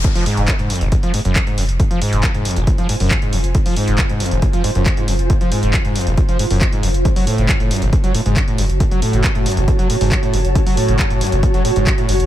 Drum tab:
HH |x-o-o-x-x-x-oxx-x-x-o-x-x-x-o-x-|x-x-o-x-x-x-oxx-x-x-o-o-x-x-o-x-|x-o-o-x-x-x-oxx-x-x-o-x-x-x-o-x-|x-x-o-x-x-x-oxx-x-x-o-o-x-x-o-x-|
CP |--------x---------------x-------|--------x---------------x-------|--------x---------------x-------|--------x---------------x-------|
BD |o-------o-------o-------o-------|o-------o-------o-------o-------|o-------o-------o-------o-------|o-------o-------o-------o-------|

HH |x-o-o-x-x-x-oxx-x-x-o-x-x-x-o-x-|x-x-o-x-x-x-oxx-x-x-o-o-x-x-o-x-|x-o-o-x-x-x-oxx-x-x-o-x-x-x-o-x-|
CP |--------x---------------x-------|--------x---------------x-------|--------x---------------x-------|
BD |o-------o-------o-------o-------|o-------o-------o-------o-------|o-------o-------o-------o-------|